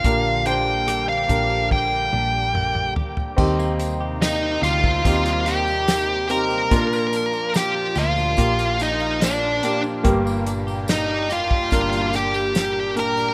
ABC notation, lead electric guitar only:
X:1
M:4/4
L:1/16
Q:1/4=72
K:Eblyd
V:1 name="Lead electric guitar"
f2 g3 f3 g6 z2 | z4 [Ee]2 [Ff]4 [Gg]4 [Bb]2- | [Bb]4 [Gg]2 [Ff]4 [Ee]2 [Dd]3 z | z4 [Ee]2 [Ff]4 [Gg]4 [Bb]2 |]